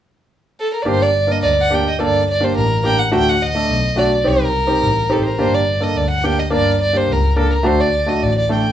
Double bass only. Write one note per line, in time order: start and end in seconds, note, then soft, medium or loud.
0.86 1.20 G1 medium
1.42 1.76 D2 medium
1.99 2.33 G1 medium
2.55 2.89 A1 medium
3.12 3.46 D2 medium
3.69 4.03 B1 medium
4.25 4.59 C2 medium
4.81 5.16 A1 medium
5.39 5.73 G1 medium
5.95 6.29 D2 medium
6.52 6.86 G1 medium
7.08 7.42 C#2 medium
7.65 7.99 D2 medium
8.21 8.56 A1 medium